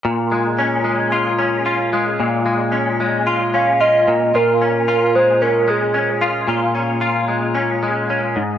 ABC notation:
X:1
M:4/4
L:1/8
Q:1/4=112
K:Bbdor
V:1 name="Soft synth lead"
z8 | z4 z f e2 | B3 c B A2 z | z8 |]
V:2 name="Clean electric guitar"
B,, A, D A, F D F A, | B,, A, D A, F D F B,, | [B,,F] D F A, D A, D F | [B,,F] D F A, D A, D A,, |]